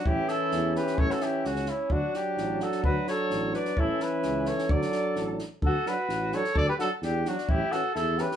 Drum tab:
SD |--o-o-oo|-oo-ooo-|--o-o-oo|--o-o-oo|
BD |o-------|o-------|o-------|o-------|

SD |--o-o-oo|-oo-o-o-|--o-o-oo|--o-o-oo|
BD |o-------|o-------|o-------|o-------|

SD |--o-o-oo|
BD |o-------|